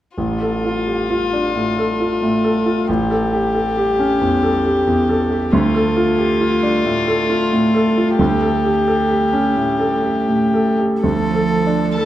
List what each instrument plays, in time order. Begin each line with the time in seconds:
0.17 grand piano A1, violin F4
0.41 grand piano A4
0.65 grand piano F4
0.87 grand piano G4
1.10 grand piano F4
1.33 grand piano D4
1.55 grand piano A2
1.78 grand piano A4
2.00 grand piano F4
2.22 grand piano A2
2.44 grand piano A4
2.66 grand piano F4
2.87 grand piano A1, violin G4
3.11 grand piano A4
3.33 grand piano G4
3.54 grand piano A4
3.77 grand piano G4
3.99 grand piano C#4
4.21 grand piano E2
4.43 grand piano A4
4.65 grand piano G4
4.87 grand piano E2
5.09 grand piano A4
5.31 grand piano G4
5.52 grand piano D2, violin F4
5.75 grand piano A4
5.96 grand piano F4
6.19 grand piano G4
6.41 grand piano F4
6.63 grand piano D4
6.85 grand piano A2
7.08 grand piano A4
7.30 grand piano F4
7.53 grand piano A2
7.75 grand piano A4
7.98 grand piano F4
8.19 grand piano D2, violin G4
8.42 grand piano A4
8.65 grand piano G4
8.88 grand piano A4
9.10 grand piano G4
9.33 grand piano C#4
9.56 grand piano A2
9.79 grand piano A4
10.03 grand piano G4
10.28 grand piano A2
10.54 grand piano A4
10.79 grand piano G4
11.02 grand piano D2, cello F3, violin A4
11.35 grand piano A4
11.67 grand piano D4
11.97 cello E3, grand piano A4, violin A4 A5